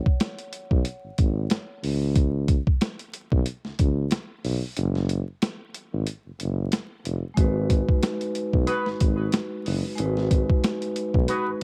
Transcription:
0.06 kick
0.20 snare, closed hi-hat
0.39 closed hi-hat
0.53 closed hi-hat
0.71 tuba B1, kick
0.85 closed hi-hat
1.04 tuba G#1
1.18 tuba G#1, kick, closed hi-hat
1.50 snare, closed hi-hat
1.84 tuba C#2, open hi-hat
2.16 kick, closed hi-hat
2.48 kick, closed hi-hat
2.67 kick
2.81 snare, closed hi-hat
2.99 closed hi-hat
3.13 closed hi-hat
3.32 tuba B1, kick
3.46 closed hi-hat
3.65 tuba C#2, snare
3.79 tuba C#2, kick, closed hi-hat
4.11 snare, closed hi-hat
4.45 tuba B1, open hi-hat
4.76 tuba F#1, closed hi-hat
4.95 snare
5.09 closed hi-hat
5.42 snare, closed hi-hat
5.74 closed hi-hat
5.93 tuba G#1
6.07 closed hi-hat
6.25 tuba F#1
6.40 tuba F#1, closed hi-hat
6.72 snare, closed hi-hat
7.05 tuba F1, closed hi-hat
7.34 tuba G#1, vibraphone G#3 D#4, kick, closed hi-hat
7.38 vibraphone F#4 B4
7.70 kick, closed hi-hat
7.89 kick
8.03 snare, closed hi-hat
8.21 closed hi-hat
8.35 closed hi-hat
8.53 tuba B1, kick
8.67 horn section F#4 G#4 B4, closed hi-hat
8.86 tuba G#1, snare
9.00 tuba G#1, kick, closed hi-hat
9.32 snare, closed hi-hat
9.66 tuba F#1, open hi-hat
9.96 tuba G#1, vibraphone G#3 D#4, closed hi-hat
10.00 vibraphone F#4 B4
10.17 snare
10.31 kick, closed hi-hat
10.50 kick
10.64 snare, closed hi-hat
10.82 closed hi-hat
10.96 closed hi-hat
11.14 tuba B1, kick
11.28 horn section F#4 G#4 B4, closed hi-hat
11.47 tuba G#1

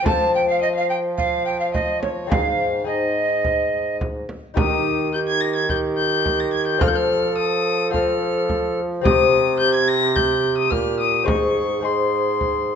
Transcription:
0.02 bassoon F3, lute F3 C4 F4 A4, frame drum
0.07 recorder A5, violin A5
0.35 recorder G5, violin G5
0.49 violin F5, recorder F5
0.62 violin D#5, recorder D#5
0.76 violin F5, recorder F5
0.90 recorder G5, violin G5
1.18 recorder F5, violin F5, frame drum
1.46 violin G5, recorder G5
1.60 violin F5, recorder F5
1.74 recorder D#5, violin D#5, frame drum
2.02 violin C#5, recorder C#5, frame drum
2.27 lute G#2 C4 D#4 G#4, violin F5
2.31 bassoon G#2, recorder F5, frame drum
2.84 lute C4 D#4 G#4, recorder D#5, violin D#5
3.45 frame drum
4.01 frame drum
4.29 frame drum
4.54 lute D#3 D#4 G4 A#4, bassoon D#3, recorder G4, violin D#6, frame drum
5.13 recorder G4, violin G6
5.28 violin G#6
5.41 violin A#6
5.56 violin G#6
5.69 recorder G4, violin G6, frame drum
5.97 violin G6
6.26 frame drum
6.40 violin A#6
6.54 violin G#6
6.67 violin G6
6.78 lute F3 C4 F4 A4, bassoon F3, recorder A4, violin F6, frame drum
6.88 violin G6
6.95 violin F6
7.38 violin D#6
7.90 lute C4 F4 A4, recorder A4, violin F6, frame drum
8.49 frame drum
9.01 lute C3 C4 G4 C5, bassoon C3, recorder G4, violin D#6, frame drum
9.60 recorder G4, violin G6
9.75 violin G#6
9.88 violin A#6
10.15 recorder G4, violin G6, frame drum
10.58 violin D#6
10.71 bassoon A#2, lute A#2, violin F6, frame drum
11.00 violin D#6
11.24 lute G#2 C4 G#4 D#5, recorder G#4, frame drum
11.28 bassoon G#2, violin C#6
11.81 lute C4 G#4 D#5, recorder G#4, violin C6
12.41 frame drum

